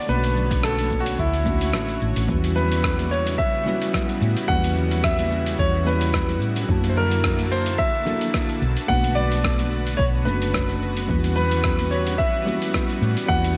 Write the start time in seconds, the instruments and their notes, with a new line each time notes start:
Already playing: analog synth pad D3 B3 F#4 C#5 A5
0.07 fingered electric bass B1, tine electric piano A3 C#4 D4 F#4, grand piano B4, high conga, shaker
0.11 tine electric piano B4
0.24 open hi-hat, shaker
0.35 low conga, shaker
0.51 kick, open hi-hat, shaker
0.63 grand piano A4, cross-stick, shaker
0.78 open hi-hat, high conga, shaker
0.91 kick, shaker
1.00 grand piano F#4
1.06 open hi-hat, shaker
1.18 fingered electric bass D2, analog synth pad E4 F#4, grand piano E4, kick, shaker
1.34 open hi-hat, shaker
1.44 tine electric piano A3 C#4 D4 E4, kick, high conga, shaker
1.48 tine electric piano F#4
1.61 open hi-hat, shaker
1.73 fingered electric bass A1, cross-stick, shaker
1.89 open hi-hat, shaker
2.01 fingered electric bass A1, shaker
2.16 fingered electric bass A1, open hi-hat, shaker
2.28 fingered electric bass E2, analog synth pad C#3 G3 B3 E4 F#4, tine electric piano G3 C#4 E4 F#4, kick, high conga, shaker
2.32 tine electric piano B4
2.44 open hi-hat, shaker
2.56 grand piano B4, low conga, shaker
2.72 open hi-hat, shaker
2.83 kick, cross-stick, shaker
2.99 open hi-hat, high conga, shaker
3.11 grand piano C#5, shaker
3.26 open hi-hat, high bongo, shaker
3.38 grand piano E5, kick, shaker
3.55 shaker
3.64 tine electric piano G3 C#4 E4 F#4, high conga, low conga, shaker
3.68 tine electric piano B4
3.82 open hi-hat, shaker
3.94 kick, cross-stick, shaker
4.09 open hi-hat, shaker
4.21 fingered electric bass A2, shaker
4.37 open hi-hat, shaker
4.47 fingered electric bass E2, tine electric piano G3 C#4 E4 F#4, grand piano F#5, kick, high conga, shaker
4.52 tine electric piano B4
4.64 open hi-hat, shaker
4.76 low conga, shaker
4.91 open hi-hat, shaker
5.04 grand piano E5, kick, cross-stick, shaker
5.19 open hi-hat, high conga, shaker
5.32 shaker
5.46 open hi-hat, shaker
5.59 fingered electric bass E2, grand piano C#5, kick, shaker
5.74 shaker
5.84 tine electric piano G3 C#4 E4 F#4, grand piano B4, high conga, shaker
5.89 tine electric piano B4
6.01 open hi-hat, shaker
6.14 kick, cross-stick, shaker
6.29 open hi-hat, high bongo, shaker
6.41 fingered electric bass A2, shaker
6.56 open hi-hat, high bongo, shaker
6.67 fingered electric bass F#2, analog synth pad D3 A#3 A5, tine electric piano A#3 D4 E4 F#4, kick, high conga, shaker
6.71 tine electric piano A5
6.84 open hi-hat, shaker
6.89 grand piano C5
6.96 grand piano A#4, low conga, shaker
7.11 open hi-hat, shaker
7.24 kick, cross-stick, shaker
7.39 open hi-hat, high conga, shaker
7.51 grand piano C5, shaker
7.66 open hi-hat, high bongo, shaker
7.78 grand piano E5, kick, shaker
7.94 shaker
8.05 tine electric piano A#3 D4 E4 F#4 A4, high conga, low conga, shaker
8.21 open hi-hat, shaker
8.34 kick, cross-stick, shaker
8.49 open hi-hat, shaker
8.61 fingered electric bass B1, analog synth pad B3 F#4 B4, shaker
8.77 open hi-hat, shaker
8.87 fingered electric bass B1, tine electric piano A3 B3 D4 F#4, grand piano F#5, kick, high conga, shaker
8.91 tine electric piano B4
9.04 open hi-hat, shaker
9.15 grand piano D5, low conga, shaker
9.32 open hi-hat, shaker
9.44 kick, cross-stick, shaker
9.59 open hi-hat, high conga, shaker
9.72 shaker
9.87 open hi-hat, shaker
9.97 fingered electric bass B1, grand piano C#5, kick, shaker
10.15 shaker
10.24 fingered electric bass F#1, tine electric piano A3 C#4 D4 F#4, grand piano B4, high conga, shaker
10.29 tine electric piano B4
10.42 open hi-hat, shaker
10.54 kick, cross-stick, shaker
10.69 open hi-hat, high bongo, shaker
10.82 shaker
10.96 open hi-hat, high bongo, shaker
11.06 fingered electric bass E2, analog synth pad E3 G3, tine electric piano G3 C#4 E4 F#4, kick, high conga, shaker
11.11 tine electric piano B4
11.24 open hi-hat, shaker
11.36 grand piano B4, low conga, shaker
11.51 open hi-hat, shaker
11.64 kick, cross-stick, shaker
11.79 open hi-hat, high conga, shaker
11.91 grand piano C#5, shaker
12.07 open hi-hat, high bongo, shaker
12.18 grand piano E5, kick, shaker
12.35 shaker
12.44 tine electric piano G3 C#4 E4 F#4, high conga, low conga, shaker
12.48 tine electric piano B4
12.62 open hi-hat, shaker
12.74 kick, cross-stick, shaker
12.89 open hi-hat, shaker
13.01 fingered electric bass A2, shaker
13.17 open hi-hat, shaker
13.26 fingered electric bass E2, tine electric piano G3 C#4 E4 F#4, grand piano F#5, kick, high conga, shaker
13.31 tine electric piano B4
13.44 open hi-hat, shaker